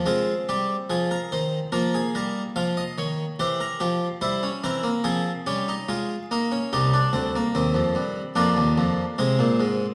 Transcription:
<<
  \new Staff \with { instrumentName = "Harpsichord" } { \time 4/4 \key f \minor \tempo 4 = 72 << { f'8 g'8 aes'16 bes'16 c''8 bes'16 aes'16 bes'8 f''16 ees''16 des''8 | c''16 bes'16 g'8 c''8 bes'8 aes'8 g'8 f'4 | g'2 f'2 | } \\ { c'2 bes2 | g'4 e'16 des'16 c'16 bes16 c'8 des'16 ees'16 r8 ees'16 des'16 | ees'16 d'16 c'16 bes16 c'4 d'4 c'4 | } >> }
  \new Staff \with { instrumentName = "Harpsichord" } { \clef bass \time 4/4 \key f \minor << { aes8 g8 f8 ees8 f8 g8 f8 ees8 | e8 f8 g8 e8 f8 g8 aes8 bes8 | g2 bes4 aes4 | } \\ { r1 | r1 | c,8 d,8 ees,16 f,16 g,8 f,16 ees,16 f,8 c16 bes,16 aes,8 | } >> }
>>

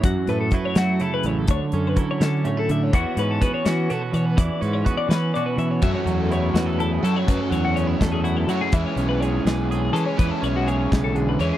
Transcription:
<<
  \new Staff \with { instrumentName = "Clean electric guitar" } { \time 6/8 \key fis \minor \tempo 4. = 83 fis'8 b'16 a'16 b'16 cis''16 fis'8 a'16 b'16 cis''16 a'16 | cis''8 a'16 b'16 a'16 cis''16 a'8 cis''16 a'16 e''16 cis''16 | fis'8 b'16 a'16 b'16 cis''16 fis'8 a'16 b'16 cis''16 b'16 | d''8 b'16 cis''16 b'16 d''16 b'8 d''16 b'16 e''16 cis''16 |
e''16 cis''8 a'16 cis''8 b'8 a'16 gis'16 a'16 cis''16 | b'16 a'16 cis''16 fis'16 cis''8 a'16 gis'16 fis'16 a'16 cis''16 gis'16 | e''16 cis''8 b'16 cis''8 b'8 a'16 gis'16 a'16 cis''16 | b'16 a'16 cis''16 fis'16 cis''8 b'16 a'16 gis'16 b'16 cis''16 gis'16 | }
  \new Staff \with { instrumentName = "Clean electric guitar" } { \time 6/8 \key fis \minor << { r8 a8 e'8 a8 e'4 | r8 cis'8 e'8 cis'8 cis'16 e'8. | <b cis' fis'>8 cis'8 fis'8 cis'8 fis'4~ | fis'8 cis'8 fis'8 cis'8 fis'4~ |
fis'4 e'8 fis'16 a'16 e'4 | r4 cis'16 e'16 a'8 e'4 | r4 gis'8 gis'8 gis'4 | r4 gis'2 | } \\ { <fis, e>4 fis4 cis4 | d4 fis4 a,4 | e4 b4 b,4 | e4 b4 b,4 |
fis,8 fis2 fis8 | fis,8 fis2 fis8 | e8 cis'2 cis'8 | e8 cis'4 cis8 d8 e8 | } >> }
  \new Staff \with { instrumentName = "Overdriven electric guitar" } { \time 6/8 \key fis \minor r2. | r2. | r2. | r2. |
<fis a cis' fis'>2~ <fis a cis' fis'>8 <fis a cis' fis'>8 | <fis a cis' fis'>2~ <fis a cis' fis'>8 <fis a cis' fis'>8 | <e gis cis' gis'>2~ <e gis cis' gis'>8 <e gis cis' gis'>8 | <e gis cis' gis'>2~ <e gis cis' gis'>8 <e gis cis' gis'>8 | }
  \new Staff \with { instrumentName = "Fingered electric bass" } { \clef bass \time 6/8 \key fis \minor fis,16 r16 a,8 r8 fis8 r8 a,,8 | d,16 r16 fis,8 r8 d8 r8 d8 | e,16 r16 gis,8 r8 e8 r8 e8 | e,16 r16 gis,8 r8 e8 r8 e8 |
fis,16 r16 e,4 e,4 fis16 r16 | fis,16 r16 e,4 e,4 fis16 r16 | e,16 r16 b,,4 b,,4 e16 r16 | e,16 r16 b,,4 b,,4 e,16 r16 | }
  \new DrumStaff \with { instrumentName = "Drums" } \drummode { \time 6/8 <hh bd>8 hh8 <hh bd>8 <hh sn>8 hh8 hh8 | <hh bd>8 hh8 <hh bd>8 <hh sn>8 hh8 hh8 | <hh bd>8 hh8 <hh bd>8 <hh sn>8 hh8 hh8 | <hh bd>8 hh8 <hh bd>8 <hh sn>8 hh8 hh8 |
<hh bd>8 hh8 hh8 <hh sn>8 hh8 hh8 | <hh bd>8 hh8 hh8 <hh bd sn>8 hh8 hh8 | <hh bd>8 hh8 hh8 <hh sn>8 hh8 hh8 | <hh bd>8 hh8 hh8 <hh bd sn>8 hh8 hh8 | }
>>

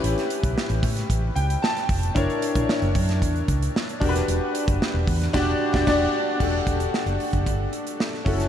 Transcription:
<<
  \new Staff \with { instrumentName = "Grand piano" } { \time 4/4 \key e \dorian \tempo 4 = 113 << { r2 r8 g''8 a''4 | r1 | r1 | r1 | } \\ { <cis' e' g' b'>2.~ <cis' e' g' b'>8 r8 | <d' e' ais' cis''>2.~ <d' e' ais' cis''>8 <d' fis' g' ais' b'>8~ | <d' fis' g' ais' b'>2 <d' fis' g' d''>8 r16 <d' fis' g' d''>16 <d' fis' g' d''>8 r8 | <d' fis' g' a'>2.~ <d' fis' g' a'>8 <cis' e' fis' a'>8 | } >> }
  \new Staff \with { instrumentName = "Fingered electric bass" } { \clef bass \time 4/4 \key e \dorian a,,16 r8 b,,16 r16 a,,16 a,8 a,,8 cis,8 r8 f,,8 | fis,,16 r8 ais,,16 r16 fis,,16 fis,8 e,8 cis,8 r8 e,,8 | e,,16 r8 fis,,16 r16 e,,16 e,8 e,,8 r16 e,,16 e,,8 r8 | e,,8 e,,8 r16 fis,,16 r16 fis,,16 g,,8 r4 fis,,8 | }
  \new DrumStaff \with { instrumentName = "Drums" } \drummode { \time 4/4 hh16 <hh sn>16 hh16 <hh bd>16 sn16 hh16 <hho bd>16 <hh sn>16 <hh bd>8 hh16 hh16 sn16 <hh sn>16 <hho bd>16 hh16 | <hh bd>16 hh16 hh16 <hh bd>16 sn16 hh16 <hho bd>16 <hh sn>16 <hh bd>16 hh16 <hh bd>16 hh16 sn16 hh16 <hho bd>16 <hh sn>16 | hh8 hh16 <hh bd>16 sn8 <hho bd>16 <hh sn>16 <cymc bd sn>8. <bd sn>16 <cymc bd sn>4 | <cymc bd>8 <hh bd>16 hh16 sn16 hh16 hho16 <hh bd>16 <hh bd>8 hh16 hh16 sn16 sn16 <hho bd>16 <hh sn>16 | }
>>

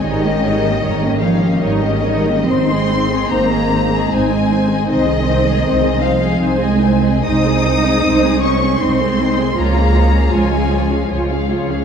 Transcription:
<<
  \new Staff \with { instrumentName = "Violin section" } { \time 3/4 \key aes \major \tempo 4 = 77 ees''4. f''8 ees''4 | c'''4 bes''4 aes''4 | ees''4. f''8 aes''4 | \key des \major ees'''4. des'''8 c'''4 |
bes''4 aes''4 r4 | }
  \new Staff \with { instrumentName = "Violin section" } { \time 3/4 \key aes \major <bes' des''>16 <g' ees''>16 <bes' des''>16 <g' ees''>16 <bes' des''>16 <g' ees''>16 <bes' des''>16 <g' ees''>16 <bes' des''>16 <g' ees''>16 <bes' des''>16 <g' ees''>16 | c''16 <aes' ees''>16 c''16 <aes' ees''>16 c''16 <aes' ees''>16 c''16 <aes' ees''>16 c''16 <aes' ees''>16 c''16 <aes' ees''>16 | c''16 <aes' ees''>16 c''16 <aes' ees''>16 c''16 <aes' ees''>16 c''16 <aes' ees''>16 c''16 <aes' ees''>16 c''16 <aes' ees''>16 | \key des \major <c'' ees''>16 <aes' c''>16 <c'' ees''>16 <aes' c''>16 <c'' ees''>16 <aes' c''>16 <c'' ees''>16 <aes' c''>16 <c'' ees''>16 <aes' c''>16 <c'' ees''>16 <aes' c''>16 |
<f' des''>16 <aes' f''>16 <f' des''>16 <aes' f''>16 <f' des''>16 <aes' f''>16 <f' des''>16 <aes' f''>16 <f' des''>16 <aes' f''>16 <f' des''>16 <aes' f''>16 | }
  \new Staff \with { instrumentName = "Viola section" } { \time 3/4 \key aes \major <g ees'>16 <bes des'>16 <g ees'>16 <bes des'>16 <g ees'>16 <bes des'>16 <g ees'>16 <bes des'>16 <g ees'>16 <bes des'>16 <g ees'>16 <bes des'>16 | <c' ees'>16 <aes c'>16 <c' ees'>16 <aes c'>16 <c' ees'>16 <aes c'>16 <c' ees'>16 <aes c'>16 <c' ees'>16 <aes c'>16 <c' ees'>16 <aes c'>16 | <c' ees'>16 <aes c'>16 <c' ees'>16 <aes c'>16 <c' ees'>16 <aes c'>16 <c' ees'>16 <aes c'>16 <c' ees'>16 <aes c'>16 <c' ees'>16 <aes c'>16 | \key des \major <c' ees'>16 <aes c'>16 <c' ees'>16 <aes c'>16 <c' ees'>16 <aes c'>16 <c' ees'>16 <aes c'>16 <c' ees'>16 <aes c'>16 <c' ees'>16 <aes c'>16 |
<f f'>16 <aes des'>16 <f f'>16 <aes des'>16 <f f'>16 <aes des'>16 <f f'>16 <aes des'>16 <f f'>16 <aes des'>16 <f f'>16 <aes des'>16 | }
  \new Staff \with { instrumentName = "Cello section" } { \clef bass \time 3/4 \key aes \major ees4. f8 ees4 | c'4 bes4 aes4 | ees4. f8 aes4 | \key des \major ees'4. des'8 c'4 |
bes4 aes4 r4 | }
  \new Staff \with { instrumentName = "Double bass section" } { \clef bass \time 3/4 \key aes \major aes,,4 aes,,4 aes,,4 | aes,,4 aes,,4 aes,,4 | c,4 c,4 c,4 | \key des \major c,4 c,4 c,4 |
des,4 des,4 des,4 | }
>>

